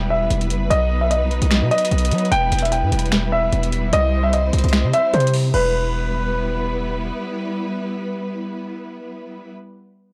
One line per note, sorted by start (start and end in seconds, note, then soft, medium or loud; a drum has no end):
0.00 0.28 E1 loud
0.00 0.69 G3 medium
0.00 0.69 B3 medium
0.00 0.67 E4 medium
0.00 3.89 B4 medium
0.10 0.67 E5 medium
0.30 0.52 E1 loud
0.30 closed hi-hat medium
0.41 closed hi-hat medium
0.50 0.70 F#1 loud
0.50 closed hi-hat medium
0.70 1.23 B1 loud
0.70 2.30 F#3 medium
0.70 3.90 B3 medium
0.70 2.30 D#4 medium
0.70 0.99 D#5 loud
0.70 closed hi-hat medium
1.01 1.10 E5 medium
1.11 1.68 D#5 medium
1.11 closed hi-hat medium
1.22 1.33 C2 loud
1.31 1.41 B1 loud
1.31 closed hi-hat soft
1.42 1.63 B1 loud
1.42 closed hi-hat medium
1.51 finger snap loud
1.51 snare loud
1.51 closed hi-hat medium
1.62 1.71 B2 loud
1.71 2.28 D#5 medium
1.71 closed hi-hat medium
1.78 closed hi-hat medium
1.85 closed hi-hat medium
1.91 2.13 B1 loud
1.91 closed hi-hat medium
1.98 closed hi-hat medium
2.05 closed hi-hat medium
2.11 2.31 F#3 loud
2.11 closed hi-hat medium
2.11 open hi-hat medium
2.18 closed hi-hat medium
2.25 closed hi-hat soft
2.32 2.51 E1 loud
2.32 5.51 G3 medium
2.32 5.51 E4 medium
2.32 2.61 G5 loud
2.32 closed hi-hat medium
2.52 2.84 E1 loud
2.52 closed hi-hat medium
2.59 2.71 E5 medium
2.59 closed hi-hat medium
2.65 closed hi-hat medium
2.72 3.29 G5 medium
2.72 closed hi-hat medium
2.83 2.92 G2 loud
2.92 3.50 E1 loud
2.92 closed hi-hat medium
2.99 closed hi-hat medium
3.06 closed hi-hat soft
3.12 finger snap medium
3.12 snare loud
3.12 closed hi-hat medium
3.32 3.89 E5 medium
3.53 3.91 E1 loud
3.53 closed hi-hat medium
3.63 closed hi-hat medium
3.72 closed hi-hat medium
3.93 4.51 C2 loud
3.93 5.52 C4 medium
3.93 5.52 C5 medium
3.93 4.22 D#5 loud
3.93 closed hi-hat medium
4.23 4.32 E5 medium
4.33 4.90 D#5 medium
4.33 closed hi-hat medium
4.53 4.63 C2 loud
4.53 closed hi-hat medium
4.59 closed hi-hat medium
4.64 4.85 C2 loud
4.64 closed hi-hat medium
4.69 closed hi-hat soft
4.73 finger snap medium
4.73 snare loud
4.73 closed hi-hat medium
4.84 4.93 C3 loud
4.93 5.12 E5 medium
4.93 closed hi-hat medium
5.14 5.52 C3 loud
5.14 5.32 C5 medium
5.14 closed hi-hat soft
5.20 closed hi-hat medium
5.27 closed hi-hat medium
5.34 open hi-hat medium
5.54 7.11 E1 loud
5.54 9.52 G3 medium
5.54 9.52 B3 medium
5.54 9.52 E4 medium
5.54 6.71 B4 medium
5.54 9.52 B4 medium
5.54 crash loud